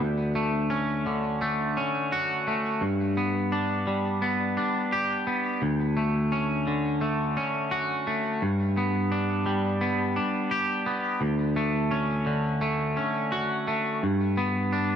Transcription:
Already playing: D4
0.00 D2
0.35 A3
0.70 C#4
1.06 D3
1.41 A3
1.77 C#4
2.12 F#4
2.47 A3
2.81 G2
3.17 B3
3.52 D4
3.87 G3
4.22 B3
4.57 D4
4.92 G4
5.27 B3
5.62 D2
5.97 A3
6.32 C#4
6.67 D3
7.01 A3
7.37 C#4
7.71 F#4
8.07 A3
8.42 G2
8.77 B3
9.12 D4
9.46 G3
9.81 B3
10.16 D4
10.51 G4
10.86 B3
11.21 D2
11.56 A3
11.91 C#4
12.26 D3
12.61 A3
12.97 C#4
13.32 F#4
13.68 A3
14.03 G2
14.37 B3
14.73 D4

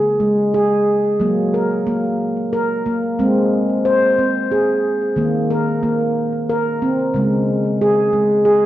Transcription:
Already playing: C#3 G#4
0.20 G#3
0.54 G#4
1.20 F#3 A#3
1.54 A#4
1.87 A#3
2.53 A#4
2.86 A#3
3.19 G#3 C4
3.85 C5
4.19 C4
4.51 G#4
5.16 D#3 A#3
5.51 A#4
5.83 A#3
6.49 A#4
6.82 C4
7.14 C#3 G#3
7.81 G#4
8.13 G#3
8.45 G#4

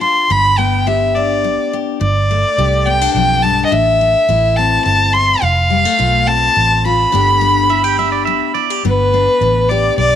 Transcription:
Already playing: A2 D4
0.01 F4 C6
0.30 G1 G2 B5
0.58 B3 G5
0.87 D3 G4 E5
1.16 D4 D5
1.44 G2
1.73 G4
2.01 G1 G2 D5
2.31 A3
2.58 C2 D3 G4
2.86 B3 G5
3.01 D4
3.13 B1 F2 G5
3.42 G2 A5
3.66 D#5
3.72 A1 A2 E5
4.01 A3
4.29 A1 E3 E4
4.56 C4 A5
4.85 G1 E2 A5
5.13 E4 C6
5.42 F1 F2 F5
5.70 G3
5.85 A3
5.99 B1 F3 F4
6.27 C4 A5
6.56 A1 C3
6.85 F4 B5
7.12 G1 G2 D3 B3 D4 G4
7.41 B3
7.69 D3 E4 E5
7.84 G4 G5
7.99 D4 E5
8.12 D5
8.25 G2 E5
8.54 E4 D5
8.70 G4
8.85 G1 G2 B3 B4
9.14 D4
9.41 A1 D3
9.69 G4 D5
9.98 B1 G2 D5

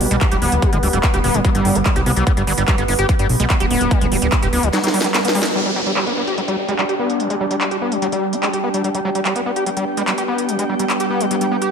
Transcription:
Already playing: G3 B3
0.01 B1, open hi-hat
0.11 B1 G#3, closed hi-hat
0.21 G3, kick, clap, closed hi-hat
0.32 D1 G4, closed hi-hat
0.42 D1 B3, open hi-hat
0.52 D1, closed hi-hat
0.62 G3, kick, closed hi-hat
0.73 D1 G#3, closed hi-hat
0.83 D1 G3, open hi-hat
0.93 D1 G3, closed hi-hat
1.03 kick, clap, closed hi-hat
1.14 D1 G4, closed hi-hat
1.24 D1 B3, open hi-hat
1.34 D1 G3, closed hi-hat
1.45 G3, kick, closed hi-hat
1.55 G1 G3, closed hi-hat
1.65 G1, open hi-hat
1.75 G1 D4, closed hi-hat
1.86 G#3, kick, clap, closed hi-hat
1.96 C2 G4, closed hi-hat
2.06 C2 B3, open hi-hat
2.17 C2 G3, closed hi-hat
2.27 G3, kick, closed hi-hat
2.37 G1 G3, closed hi-hat
2.47 G1 G3, open hi-hat
2.58 G1 G3, closed hi-hat
2.68 G3, kick, clap, closed hi-hat
2.78 G1 B3, closed hi-hat
2.88 G1 B3, open hi-hat
2.99 G1 G4, closed hi-hat
3.09 G3, kick, closed hi-hat
3.19 G2 G3, closed hi-hat
3.29 B1, open hi-hat
3.40 B1 G#3, closed hi-hat
3.50 G3, kick, clap, closed hi-hat
3.60 D1 G4, closed hi-hat
3.71 D1 B3, open hi-hat
3.81 D1, closed hi-hat
3.91 G3, kick, closed hi-hat
4.01 D1 G#3, closed hi-hat
4.12 D1 G3, open hi-hat
4.22 D1 G3, closed hi-hat
4.32 kick, clap, closed hi-hat
4.42 D1 G4, closed hi-hat
4.53 D1 B3, open hi-hat
4.63 D1 G3, closed hi-hat
4.73 G3, snare, closed hi-hat
4.84 G3, snare, closed hi-hat
4.94 G3, open hi-hat
5.01 G3, snare, closed hi-hat
5.14 B3, snare, clap, closed hi-hat
5.25 B3, snare, closed hi-hat
5.35 G#3, open hi-hat
5.42 G3, snare, closed hi-hat
5.56 G3 D4, closed hi-hat, downlifter
5.62 G3 G4, closed hi-hat
5.76 G3
5.86 G3, closed hi-hat
5.97 G3 G5, clap, closed hi-hat
6.07 B3, closed hi-hat
6.17 B3
6.27 G4, closed hi-hat
6.38 G3, closed hi-hat
6.48 G3, closed hi-hat
6.69 G#3, closed hi-hat
6.79 G3, clap, closed hi-hat
6.89 G4, closed hi-hat
6.99 B3
7.10 closed hi-hat
7.20 G3, closed hi-hat
7.30 G#3, closed hi-hat
7.40 G3
7.51 G3, closed hi-hat
7.61 clap, closed hi-hat
7.71 G4, closed hi-hat
7.82 B3
7.92 G3, closed hi-hat
8.02 G3, closed hi-hat
8.12 G3, closed hi-hat
8.33 D4, closed hi-hat
8.43 G#3, clap, closed hi-hat
8.53 G4, closed hi-hat
8.64 B3
8.74 G3, closed hi-hat
8.84 G3 B3, closed hi-hat
8.95 G3, closed hi-hat
9.05 G3
9.15 G3, closed hi-hat
9.25 G3, clap, closed hi-hat
9.36 B3, closed hi-hat
9.46 B3
9.56 G4, closed hi-hat
9.66 G3, closed hi-hat
9.77 G3, closed hi-hat
9.97 G#3, closed hi-hat
10.08 G3, clap, closed hi-hat
10.18 G4, closed hi-hat
10.28 B3
10.38 closed hi-hat
10.49 G3, closed hi-hat
10.59 G#3, closed hi-hat
10.69 G3
10.79 G3, closed hi-hat
10.90 clap, closed hi-hat
11.00 G4, closed hi-hat
11.10 B3
11.21 G3, closed hi-hat
11.31 G3, closed hi-hat
11.41 G3, closed hi-hat
11.51 B3
11.62 G4, closed hi-hat

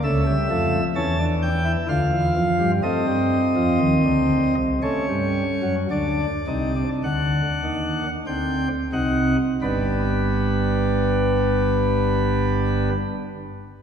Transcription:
0.04 C#2 C#3 A3 E5
0.27 G3
0.51 F2 F3 A3
0.95 E2 E3 C#4 A5
1.20 D4
1.42 G5
1.65 E4
1.89 D2 D3 F4 F5
2.13 E2 E3
2.36 F2 F3
2.59 G2 G3
2.83 A3 C4 D#5
3.07 G2 G3
3.56 F2 F3
3.80 D#2 D#3
4.05 D2 D3
4.56 C2 C3
4.83 A3 C#4 C#5
5.09 G2 G3
5.63 F#2 F#3
5.91 D2 D3 D4 D5
6.48 C2 C3 D#4
6.76 D4
7.04 D2 D3 F#5
7.64 D#2 D#3
8.27 D2 D3 C4 G5
8.93 C2 C3 D#4 F#5
9.62 G1 G2 G3 B3 D4 B4

